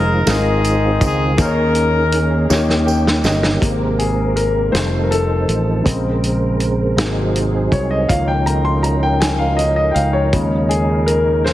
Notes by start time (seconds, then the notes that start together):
Already playing: F1 D#3 G#3 C4 D#4 F4 G#4 A#4 C5
0.26 G#1 G#3 C4 D#4 F4 A#4, snare, closed hi-hat, tambourine
0.31 G#4
0.64 closed hi-hat, tambourine
1.01 C#2, kick, closed hi-hat, tambourine
1.05 G#4
1.37 D#2 D#3 A#3 C#4 D#4 G#4 A#4 C5, kick, closed hi-hat, tambourine
1.45 C#5
1.75 closed hi-hat
2.12 closed hi-hat
2.49 D#2 D#3 A#3 C#4 D#4 G4 C#5, snare, tambourine
2.70 snare
2.86 G5, tambourine
3.07 snare
3.24 G1 D#5, snare, tambourine
3.43 snare
3.61 G#1 C3 G#3 A#3 C4 D#4 G4 A#4 C5, kick, closed hi-hat
3.99 G#4, closed hi-hat
4.36 A#4, closed hi-hat
4.71 F1 D#3 F3 G3 A3 C4 D#4 F4 G#4 A4 C5, snare, closed hi-hat
4.80 A4
5.04 A#4
5.11 A4, closed hi-hat
5.48 A1, closed hi-hat
5.83 A#1 C#3 G#3 C4 G#4 A#4, kick, closed hi-hat
6.24 closed hi-hat
6.60 closed hi-hat
6.97 G#1 C3 F#3 A#3 C4 D#4 F#4 G#4, snare, closed hi-hat
7.36 closed hi-hat
7.72 C2 C#5, kick, closed hi-hat
7.91 D#5
8.07 C#2 D#3 E3 F3 A#3 C#4 D#4 F4 A#4 F5, kick, closed hi-hat
8.15 F3
8.28 G5
8.46 A#5, closed hi-hat
8.65 C6
8.83 A#5, closed hi-hat
9.03 G5
9.21 G#5, snare, closed hi-hat
9.38 F5
9.57 D#5, closed hi-hat
9.76 D#5
9.91 F5 G5
9.95 C#2, closed hi-hat
10.13 C#5
10.32 D#2 C#3 F3 G#3 C#4 D#4 G#4 A#4, kick, closed hi-hat
10.69 G#4, closed hi-hat
11.06 A#4, closed hi-hat
11.44 C5, snare